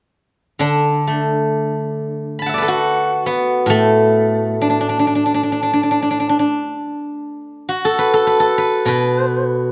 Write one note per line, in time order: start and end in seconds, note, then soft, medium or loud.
0.59 3.26 D3 soft
0.59 3.40 D4 medium
1.07 2.84 A3 soft
2.39 3.87 A5 soft
2.39 3.74 B5 soft
2.46 4.21 E5 soft
2.46 4.07 F#5 soft
2.54 4.39 D5 soft
2.58 4.62 B4 soft
2.62 4.82 A4 soft
2.68 5.11 F#4 medium
3.26 6.36 B3 medium
3.66 6.41 A2 soft
3.66 7.03 A3 medium
4.61 4.69 D4 soft
4.70 4.80 D4 soft
4.81 4.89 D4 soft
4.89 4.99 D4 soft
4.99 5.07 D4 soft
5.07 5.15 D4 soft
5.15 5.25 D4 soft
5.26 5.34 D4 soft
5.34 5.43 D4 soft
5.43 5.52 D4 soft
5.52 5.62 D4 soft
5.63 5.73 D4 soft
5.73 5.83 D4 soft
5.83 5.91 D4 soft
5.91 6.02 D4 soft
6.02 6.10 D4 soft
6.11 6.19 D4 soft
6.20 6.29 D4 soft
6.29 6.39 D4 soft
6.39 9.19 D4 soft
7.69 9.72 F#4 soft
7.85 8.13 A4 medium
7.99 8.26 B4 medium
8.14 8.39 A4 medium
8.27 8.57 B4 medium
8.40 9.72 A4 medium
8.58 8.88 B4 medium
8.85 9.72 B2 soft
8.85 9.72 B4 medium